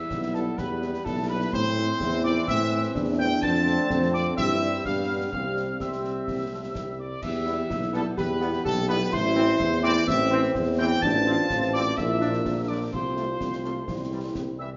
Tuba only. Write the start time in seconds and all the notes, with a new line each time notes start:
0.11 B1
0.58 E2
1.06 B1
1.53 A2
2.00 E2
2.48 A2
2.96 E2
3.43 F2
3.91 F2
4.38 G2
4.86 G2
5.33 C2
5.80 C2
6.28 C2
6.76 C2
7.23 E2
7.70 B1
8.18 E2
8.66 B1
9.13 A1
9.60 E2
10.08 A1
10.55 E2
11.03 A1
11.50 A1
11.98 A#1
12.46 A#1
12.93 C2
13.41 C2
13.88 C2
14.35 C2